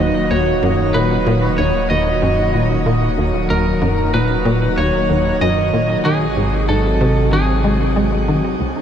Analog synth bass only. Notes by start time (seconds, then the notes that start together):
0.00 D#2
0.31 D#2
0.63 F#2
0.95 A#2
1.27 A#2
1.58 D#2
1.90 D#2
2.22 F#2
2.54 A#2
2.86 A#2
3.18 D#2
3.50 D#2
3.82 F#2
4.14 A#2
4.45 A#2
4.77 D#2
5.09 D#2
5.41 F#2
5.73 A#2
6.05 D#3
6.37 G#2
6.69 G#2
7.01 C3
7.33 D#3
7.64 G#3
7.96 G#3
8.28 D#3
8.60 C#2